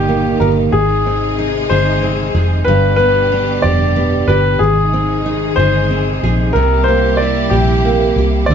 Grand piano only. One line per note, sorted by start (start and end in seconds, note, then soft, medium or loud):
0.00 0.36 G4 medium
0.40 0.47 A#4 medium
0.72 1.33 G#4 medium
1.70 2.63 C5 medium
2.65 2.95 B4 medium
2.96 3.58 B4 medium
3.62 4.30 D5 medium
4.28 4.58 B4 medium
4.59 5.60 G#4 medium
5.56 6.57 C5 medium
6.53 6.87 A#4 medium
6.84 7.19 C5 medium
7.17 7.52 D5 medium
7.50 8.11 G4 medium
8.46 8.54 D5 medium